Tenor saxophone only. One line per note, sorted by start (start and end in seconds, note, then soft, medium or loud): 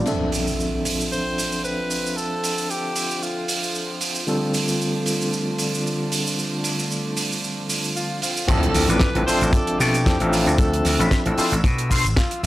1.12 1.61 C5 loud
1.65 2.18 B4 medium
2.17 2.72 A4 loud
2.70 3.25 G4 medium
3.23 4.02 F4 medium
7.96 8.20 F4 medium
8.23 8.50 F4 medium
8.48 8.90 A4 loud
8.89 9.26 B4 loud
9.26 9.54 C5 loud
9.53 9.81 A4 loud
9.79 10.33 G4 loud
10.32 10.58 F4 medium
10.58 11.08 A4 loud
12.17 12.42 F4 medium